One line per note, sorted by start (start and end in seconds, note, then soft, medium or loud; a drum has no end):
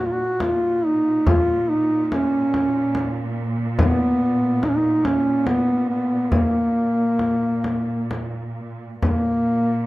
0.00 9.03 A#2 soft
0.06 0.14 F4 medium
0.12 0.43 F#4 medium
0.40 0.87 F4 medium
0.40 frame drum medium
0.86 1.27 D#4 medium
1.27 1.71 F4 medium
1.27 frame drum medium
1.70 2.06 D#4 medium
2.06 2.14 D#4 soft
2.12 3.37 C#4 medium
2.12 frame drum soft
2.54 frame drum soft
2.95 frame drum soft
3.79 4.65 B3 medium
3.79 frame drum medium
4.63 4.70 D#4 medium
4.63 frame drum soft
4.69 4.78 C#4 medium
4.77 5.07 D#4 medium
5.05 5.48 C#4 medium
5.05 frame drum soft
5.47 5.88 B3 medium
5.47 frame drum soft
5.89 6.33 B3 medium
6.32 8.11 A#3 medium
6.32 frame drum medium
7.19 frame drum soft
7.64 frame drum soft
8.11 frame drum soft
9.02 9.87 A#2 soft
9.02 9.87 A#3 medium
9.02 frame drum medium